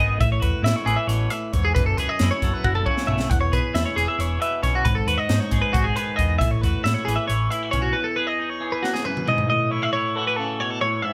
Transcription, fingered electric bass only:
0.00 G#1
0.21 A1
0.43 E2
0.63 A2
0.86 A1
1.07 A1
1.54 E2
1.77 F#1
1.97 C#2
2.20 F#2
2.42 F#1
2.64 F#1
3.08 B1
3.31 E1
3.53 B1
3.75 E2
3.96 E1
4.18 E1
4.64 B1
4.86 G#1
5.07 D#2
5.29 G#2
5.52 G#1
5.75 G#1
6.19 E2
6.42 A1
6.63 E2
6.85 A2
7.07 A1
7.29 A1
7.74 B1

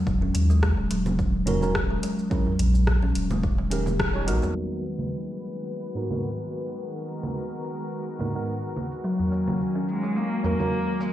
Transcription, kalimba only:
0.22 C#4
0.50 G#3
0.63 G#3
0.91 F#3
1.62 C#4
1.90 G#3
2.03 G#3
2.31 F#3
3.03 C#4
3.31 G#3
3.43 G3
3.71 D#3
4.28 G3
4.42 A#3
9.04 F#3
9.75 C#4
10.03 G#3
10.16 G#3
10.44 F#3

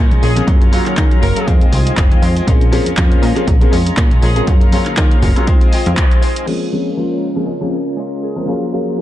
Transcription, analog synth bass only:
Already playing: A#2
0.11 A#1
0.23 A#1
0.47 F#2
0.86 D#3
0.98 D#3
1.22 F#1
1.47 F2
1.72 C2
1.97 F1
2.11 F2
2.22 F2
2.47 A#1
2.86 F2
2.97 F2
3.22 A#2
3.47 A#1
3.73 F2
3.97 A#2
4.11 A#1
4.23 A#1
4.47 F#2
4.86 D#3
4.97 D#3
5.22 F#1
5.87 F2

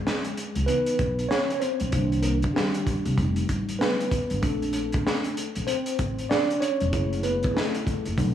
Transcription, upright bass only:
0.56 C#2
0.99 B1
1.81 A#1
1.93 C2
3.06 C2
3.18 F1
3.49 A1
4.31 G1
4.43 A#1
5.56 A#1
5.99 A1
6.81 E1
6.93 F#1
8.06 F#1
8.18 B1

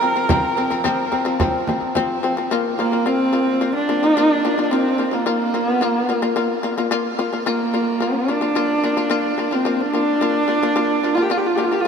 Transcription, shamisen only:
0.01 F3 C4
0.16 F3 C4
0.29 F3 C4
0.57 F3 C4
0.70 F3 C4
0.84 F3 C4
1.12 F3 C4
1.25 F3 C4
1.40 F3 C4
1.69 F3 C4
1.95 F3 C4
2.23 F3 C4
2.37 F3 C4
2.51 A#3 F4
2.79 A#3 F4
2.92 A#3 F4
3.06 A#3 F4
3.33 A#3 F4
3.61 A#3 F4
3.89 A#3 F4
4.03 A#3 F4
4.17 A#3 F4
4.45 A#3 F4
4.58 A#3 F4
4.71 A#3 F4
4.98 A#3 F4
5.11 A#3 F4
5.26 A#3 F4
5.54 A#3 F4
5.81 A#3 F4
6.09 A#3 F4
6.22 A#3 F4
6.36 A#3 F4
6.63 A#3 F4
6.78 A#3 F4
6.91 A#3 F4
7.19 A#3 F4
7.33 A#3 F4
7.46 A#3 F4
7.74 A#3 F4
8.00 A#3 F4
8.28 A#3 F4
8.41 A#3 F4
8.55 A#3 F4
8.84 A#3 F4
8.97 A#3 F4
9.10 A#3 F4
9.38 A#3 F4
9.51 A#3 F4
9.65 A#3 F4
9.93 A#3 F4
10.21 A#3 F4
10.48 A#3 F4
10.63 A#3 F4
10.76 A#3 F4
11.04 A#3 F4
11.17 A#3 F4
11.30 A#3 F4
11.58 A#3 F4
11.71 A#3 F4

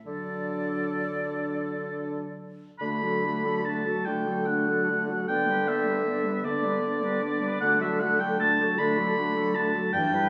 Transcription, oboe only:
0.06 A4
2.79 B5
3.65 A5
4.05 G5
4.46 F#5
5.28 G5
5.68 E5
6.45 D5
7.60 F#5
7.81 E5
8.00 F#5
8.20 G5
8.40 A5
8.78 B5
9.55 A5
9.93 G5

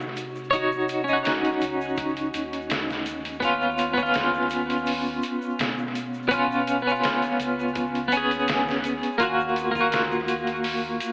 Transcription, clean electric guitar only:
Already playing: D#4 F#4 C#5
0.51 D#4 C#5
0.55 F#4
1.04 C#4
1.09 D#4
1.13 F#4
3.40 B3 C#4
3.45 F4
3.93 B3
3.98 C#4
4.03 F4
6.29 B3 C#4
6.34 F4
6.82 B3
6.87 C#4
6.92 F4
8.08 B3
8.13 C#4
8.17 G#4
9.18 A#3 F4
9.23 F#4
9.71 A#3
9.76 F4
9.81 F#4

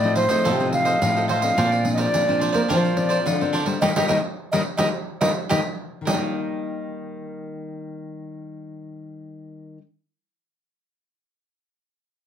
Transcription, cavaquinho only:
0.04 A4 C5 D#5
0.15 F4 A4 C5 D#5
0.29 A4 C5 D#5
0.45 F4 A4 C5 D#5
0.59 A4 C5 D#5
0.85 A4 C5 D#5
1.01 muted cavaquinho stroke
1.15 A4 C5 D#5
1.28 F4 A4 C5 D#5
1.41 A4 C5 D#5
1.57 D4 A#4 C5 D5
1.71 A#4 C5 D5
1.85 muted cavaquinho stroke
1.97 A#4 C5 D5
2.28 A#4 C5 D5
2.39 D4 A#4 C5 D5
2.52 A#4 C5 D5
2.69 D4 A#4 C5 D5
2.84 A#4 C5 D5
3.09 A#4 C5 D5
3.26 muted cavaquinho stroke
3.40 A#4 C5 D5
3.53 D4 A#4 C5 D5
3.65 A#4 C5 D5
3.82 G4 A#4 D#5
3.96 G4 A#4 D#5
4.08 G4 A#4 D#5
4.52 G4 A#4 D#5
4.77 G4 A#4 D#5
5.21 G4 A#4 D#5
5.49 G4 A#4 D#5
6.05 A#4 D#5 G5 A#5

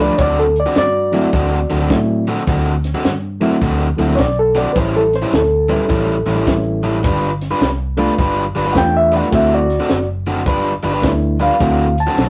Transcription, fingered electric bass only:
0.19 D2
0.77 G2
1.34 D2
1.71 D2
1.90 A2
2.47 D2
3.05 G2
3.62 D2
3.99 D2
4.19 B1
4.76 A1
5.33 D2
5.90 A1
6.26 A1
6.47 A1
7.05 G1
7.61 C2
8.19 G1
8.56 G1
8.76 E2
9.32 D2
9.91 F#1
10.46 G1
10.84 G1
11.03 D2
11.61 D2
12.18 B1

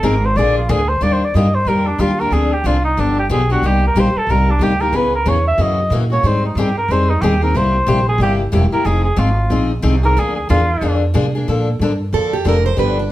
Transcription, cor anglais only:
0.05 A#4
0.25 C5
0.37 D5
0.58 F4
0.69 G#4
0.89 C5
1.03 D5
1.13 C5
1.25 D5
1.35 D#5
1.55 C5
1.68 A#4
1.87 D4
2.00 F4
2.20 A#4
2.33 G#4
2.52 G4
2.66 F4
2.85 D#4
2.99 D4
3.19 G4
3.32 G#4
3.52 F#4
3.67 G4
3.87 A#4
3.99 C5
4.18 A4
4.31 A#4
4.50 D4
4.63 G4
4.81 A#4
4.96 B4
5.15 A#4
5.28 C#5
5.48 E5
5.61 D#5
6.12 C#5
6.26 C5
6.46 D#4
6.59 G4
6.78 A#4
6.91 C5
7.10 D#4
7.22 G4
7.43 A#4
7.57 C5
8.09 G#4
8.22 G4
8.73 A#4
8.86 G#4
9.04 G#4
9.18 F4
10.05 A#4
10.19 G#4
10.35 G#4
10.50 F4

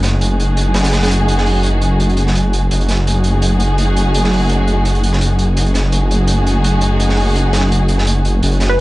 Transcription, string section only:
Already playing: A3 D#4 F#4 G#4
2.71 A3 D#4 F#4 G#4
5.57 A3 D#4 F#4 G#4
8.42 A3 D#4 F#4 G#4

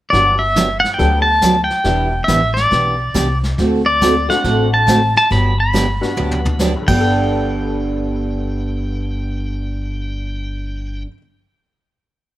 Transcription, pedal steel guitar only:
0.10 D5
0.39 E5
0.80 F#5
0.94 G5
1.22 A5
1.64 G5
2.24 E5
2.54 D5
3.86 D5
4.30 F#5
4.74 A5
5.17 A5
5.32 B5
5.60 B5
6.88 G5

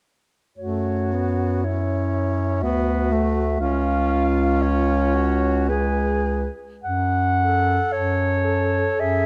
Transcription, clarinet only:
0.58 C#5
1.63 C#5
2.62 E5
3.61 F5
4.62 C#5
5.69 B4
6.84 F#5
7.92 C#5
9.00 E5

